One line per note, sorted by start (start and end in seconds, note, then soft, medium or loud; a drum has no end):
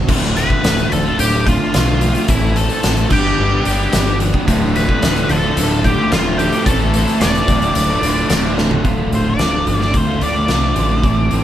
0.07 0.45 D1 loud
0.07 0.49 D2 loud
0.07 0.34 A2 loud
0.07 0.24 D3 loud
0.07 0.22 A3 loud
0.07 0.20 F4 loud
0.07 kick loud
0.07 crash loud
0.22 0.36 D3 medium
0.22 0.37 A3 medium
0.22 0.38 F4 medium
0.22 snare soft
0.35 0.63 A2 medium
0.35 0.64 D3 medium
0.35 0.64 A3 medium
0.35 0.65 F4 loud
0.35 0.88 B4 medium
0.35 0.93 B5 loud
0.35 closed hi-hat medium
0.50 kick medium
0.63 0.82 D1 medium
0.63 1.05 D2 loud
0.63 0.90 A2 medium
0.63 0.79 D3 medium
0.63 0.77 A3 loud
0.63 0.75 F4 loud
0.63 snare loud
0.63 closed hi-hat loud
0.77 0.91 D3 medium
0.77 0.91 A3 medium
0.77 0.91 F4 medium
0.77 closed hi-hat soft
0.91 1.10 D1 medium
0.91 1.18 A4 medium
0.91 1.19 A5 loud
0.91 muted distorted electric guitar stroke soft
0.91 closed hi-hat medium
1.04 1.46 D3 medium
1.04 1.47 A3 medium
1.04 1.48 F4 medium
1.19 1.55 D1 loud
1.19 1.45 G4 medium
1.19 1.48 G5 medium
1.19 closed hi-hat loud
1.46 1.72 A2 medium
1.46 1.73 D3 medium
1.46 1.74 A3 medium
1.46 2.26 F4 medium
1.46 1.75 F4 medium
1.46 2.26 F5 medium
1.46 kick loud
1.46 closed hi-hat medium
1.72 2.10 B1 medium
1.72 2.14 D2 medium
1.72 1.99 A2 medium
1.72 1.89 D3 loud
1.72 1.87 A3 loud
1.72 1.85 F4 loud
1.72 snare loud
1.72 closed hi-hat loud
1.87 2.00 D3 medium
1.87 2.01 A3 medium
1.87 2.02 F4 medium
2.00 2.26 A2 medium
2.00 2.16 D3 medium
2.00 2.14 A3 medium
2.00 2.12 F4 medium
2.00 closed hi-hat medium
2.13 2.28 D3 medium
2.13 2.27 A3 medium
2.13 2.26 F4 medium
2.13 closed hi-hat soft
2.27 2.65 A1 loud
2.27 2.69 A2 loud
2.27 2.70 E3 loud
2.27 2.43 A3 loud
2.27 2.42 C4 loud
2.27 2.55 E4 medium
2.27 2.41 E4 loud
2.27 2.39 A4 loud
2.27 2.58 E5 medium
2.27 kick loud
2.27 closed hi-hat loud
2.40 2.53 A3 medium
2.40 2.54 C4 medium
2.40 2.55 E4 medium
2.40 2.56 A4 medium
2.54 2.82 A3 medium
2.54 2.83 C4 medium
2.54 2.83 E4 medium
2.54 3.08 A4 medium
2.54 2.84 A4 loud
2.54 3.12 A5 medium
2.54 closed hi-hat medium
2.70 closed hi-hat medium
2.81 3.03 A1 medium
2.81 3.08 A2 medium
2.81 3.09 E3 loud
2.81 2.98 A3 medium
2.81 2.97 C4 loud
2.81 2.96 E4 loud
2.81 2.95 A4 loud
2.81 snare loud
2.81 closed hi-hat loud
2.96 3.10 A3 medium
2.96 3.10 C4 medium
2.96 3.09 E4 medium
2.96 3.09 A4 medium
2.96 closed hi-hat medium
3.09 3.29 G1 medium
3.09 3.51 G2 loud
3.09 3.52 D3 medium
3.09 3.25 G3 loud
3.09 3.24 B3 loud
3.09 3.23 D4 loud
3.09 4.17 G4 medium
3.09 3.21 G4 loud
3.09 4.17 G5 medium
3.09 kick loud
3.09 crash loud
3.23 3.63 G3 medium
3.23 3.64 B3 medium
3.23 3.65 D4 medium
3.23 3.66 G4 medium
3.39 3.57 G1 loud
3.64 3.84 G1 medium
3.64 3.91 G3 medium
3.64 3.92 B3 medium
3.64 3.93 D4 medium
3.64 3.93 G4 medium
3.64 closed hi-hat medium
3.91 4.29 G1 medium
3.91 4.33 G2 loud
3.91 4.34 D3 loud
3.91 4.07 G3 medium
3.91 4.06 B3 loud
3.91 4.05 D4 loud
3.91 4.04 G4 loud
3.91 snare loud
3.91 closed hi-hat loud
4.05 4.17 G3 medium
4.05 4.19 B3 medium
4.05 4.19 D4 medium
4.05 4.21 G4 medium
4.18 4.34 G3 medium
4.18 4.34 B3 medium
4.18 4.32 D4 medium
4.18 4.31 G4 medium
4.18 closed hi-hat medium
4.32 4.47 G3 medium
4.32 4.47 B3 medium
4.32 4.46 D4 medium
4.32 4.45 G4 medium
4.32 kick medium
4.45 4.84 D1 loud
4.45 4.88 D2 loud
4.45 4.71 A2 loud
4.45 4.62 D3 loud
4.45 4.61 A3 loud
4.45 4.58 F4 loud
4.45 kick loud
4.45 closed hi-hat loud
4.60 4.73 D3 medium
4.60 4.74 A3 medium
4.60 4.75 F4 medium
4.72 5.01 D2 medium
4.72 5.01 A2 medium
4.72 5.02 D3 medium
4.72 5.03 A3 medium
4.72 5.03 F4 medium
4.72 5.32 B5 loud
4.72 closed hi-hat medium
4.77 5.27 B4 medium
4.89 kick medium
5.01 5.21 D1 medium
5.01 5.43 D2 loud
5.01 5.29 A2 medium
5.01 5.17 D3 medium
5.01 5.16 A3 medium
5.01 5.14 F4 loud
5.01 snare loud
5.01 closed hi-hat loud
5.15 5.29 D3 medium
5.15 5.30 A3 medium
5.15 5.29 F4 medium
5.15 closed hi-hat soft
5.29 5.48 D1 medium
5.29 5.55 D2 medium
5.29 5.56 A2 medium
5.29 5.57 D3 medium
5.29 5.82 A4 medium
5.29 5.81 A5 loud
5.29 muted distorted electric guitar stroke soft
5.29 closed hi-hat medium
5.43 5.83 D3 medium
5.43 5.85 A3 medium
5.43 5.85 F4 medium
5.57 5.93 D1 loud
5.57 5.83 D2 loud
5.57 5.83 A2 loud
5.57 5.84 D3 loud
5.57 closed hi-hat loud
5.83 6.10 D2 medium
5.83 6.10 A2 medium
5.83 6.11 D3 medium
5.83 6.13 A3 medium
5.83 6.12 F4 medium
5.83 6.11 G4 medium
5.83 6.13 G5 medium
5.83 kick medium
5.83 closed hi-hat medium
6.10 6.48 D1 medium
6.10 6.52 D2 medium
6.10 6.37 A2 loud
6.10 6.27 D3 loud
6.10 6.26 A3 loud
6.10 6.38 F4 medium
6.10 6.23 F4 loud
6.10 6.40 F5 loud
6.10 snare loud
6.10 closed hi-hat loud
6.24 6.39 D3 medium
6.24 6.41 A3 medium
6.24 6.41 F4 medium
6.38 6.65 D2 medium
6.38 6.65 A2 medium
6.38 6.55 D3 medium
6.38 6.54 A3 medium
6.38 6.65 G4 medium
6.38 6.64 G5 medium
6.38 closed hi-hat medium
6.42 6.51 F4 medium
6.52 6.67 D3 medium
6.52 6.67 A3 medium
6.52 6.65 F4 medium
6.52 closed hi-hat medium
6.66 7.02 A1 medium
6.66 7.07 A2 loud
6.66 7.08 E3 loud
6.66 6.83 A3 loud
6.66 6.81 C4 loud
6.66 6.80 E4 loud
6.66 7.18 A4 medium
6.66 6.79 A4 loud
6.66 7.23 A5 loud
6.66 kick loud
6.66 closed hi-hat loud
6.80 6.92 A3 medium
6.80 6.93 C4 medium
6.80 6.95 E4 medium
6.80 6.96 A4 medium
6.93 7.20 A2 medium
6.93 7.21 E3 loud
6.93 7.20 A3 medium
6.93 7.21 C4 medium
6.93 7.22 E4 loud
6.93 7.22 A4 medium
6.93 closed hi-hat medium
7.08 closed hi-hat soft
7.20 7.39 E1 medium
7.20 7.46 A2 loud
7.20 7.47 E3 medium
7.20 7.36 A3 loud
7.20 7.35 C4 medium
7.20 7.34 E4 loud
7.20 7.33 A4 loud
7.20 8.54 D5 medium
7.20 8.54 D6 loud
7.20 snare loud
7.20 closed hi-hat loud
7.34 7.48 A3 medium
7.34 7.48 C4 medium
7.34 7.47 E4 medium
7.34 7.46 A4 medium
7.34 closed hi-hat medium
7.47 7.66 D1 medium
7.47 7.89 D2 loud
7.47 7.89 A2 loud
7.47 7.63 D3 loud
7.47 7.62 A3 medium
7.47 7.60 F4 loud
7.47 kick loud
7.47 closed hi-hat loud
7.61 8.02 D3 medium
7.61 8.04 A3 medium
7.61 8.04 F4 medium
7.61 closed hi-hat medium
7.75 7.93 D1 medium
7.75 8.02 D2 loud
7.75 8.02 A2 loud
7.75 8.02 D3 loud
7.75 closed hi-hat loud
8.02 8.20 D1 medium
8.02 8.30 D2 medium
8.02 8.28 A2 medium
8.02 8.29 D3 medium
8.02 8.30 A3 medium
8.02 8.31 F4 medium
8.02 closed hi-hat medium
8.29 8.66 D1 medium
8.29 8.71 D2 loud
8.29 8.55 A2 loud
8.29 8.45 D3 loud
8.29 8.43 A3 loud
8.29 8.42 F4 loud
8.29 snare loud
8.29 closed hi-hat loud
8.43 8.56 D3 medium
8.43 8.57 A3 medium
8.43 8.58 F4 medium
8.56 8.84 D2 medium
8.56 8.83 A2 medium
8.56 8.72 D3 medium
8.56 8.70 A3 medium
8.56 8.68 F4 medium
8.56 snare medium
8.70 8.84 D3 medium
8.70 8.84 A3 medium
8.70 8.83 F4 medium
8.70 floor tom loud
8.83 9.11 D1 medium
8.83 9.36 D2 medium
8.83 9.10 A2 medium
8.83 9.11 D3 loud
8.83 9.13 A3 loud
8.83 9.13 F4 loud
8.83 kick loud
8.83 closed hi-hat medium
9.11 9.39 D1 loud
9.11 9.38 A2 medium
9.11 9.26 D3 medium
9.11 9.26 A3 medium
9.11 9.23 F4 medium
9.11 9.27 C5 medium
9.11 closed hi-hat medium
9.24 9.38 D3 medium
9.24 9.40 A3 medium
9.24 9.40 F4 medium
9.30 9.81 D5 medium
9.38 9.66 D1 medium
9.38 10.07 D2 medium
9.38 10.08 A2 medium
9.38 9.81 D3 medium
9.38 9.80 A3 medium
9.38 9.78 F4 medium
9.38 snare loud
9.38 closed hi-hat medium
9.66 9.93 G1 medium
9.66 9.80 A2 medium
9.66 9.79 D3 medium
9.66 9.80 A3 medium
9.66 9.79 F4 medium
9.66 closed hi-hat medium
9.79 10.08 D3 medium
9.79 10.08 A3 medium
9.79 10.05 F4 medium
9.79 9.97 D5 medium
9.79 muted clean electric guitar stroke medium
9.79 snare soft
9.94 10.20 D2 medium
9.94 10.22 C5 medium
9.94 kick loud
9.94 closed hi-hat medium
10.06 10.21 D3 medium
10.06 10.22 A3 medium
10.06 10.22 F4 medium
10.21 10.48 D2 medium
10.21 10.48 A2 medium
10.21 10.37 D3 medium
10.21 10.35 A3 medium
10.21 10.33 F4 medium
10.21 11.44 D5 medium
10.21 closed hi-hat medium
10.34 10.48 D3 medium
10.34 10.50 A3 medium
10.34 10.50 F4 medium
10.48 10.76 C2 medium
10.48 11.02 D2 medium
10.48 10.74 A2 medium
10.48 10.76 D3 loud
10.48 10.77 A3 medium
10.48 10.77 F4 loud
10.48 snare loud
10.48 closed hi-hat medium
10.75 11.03 A1 medium
10.75 11.01 A2 medium
10.75 10.91 D3 medium
10.75 10.90 A3 medium
10.75 10.88 F4 medium
10.75 closed hi-hat medium
10.89 11.04 D3 medium
10.89 11.04 A3 medium
10.89 11.02 F4 medium
10.89 muted clean electric guitar stroke medium
11.02 11.30 A1 medium
11.02 11.44 A2 medium
11.02 11.44 E3 medium
11.02 11.29 A3 medium
11.02 11.30 C4 medium
11.02 11.30 E4 loud
11.02 11.32 A4 loud
11.02 kick loud
11.02 closed hi-hat medium
11.29 11.44 A1 medium
11.29 11.44 A3 medium
11.29 11.44 C4 medium
11.29 11.43 E4 medium
11.29 11.43 A4 medium
11.29 closed hi-hat medium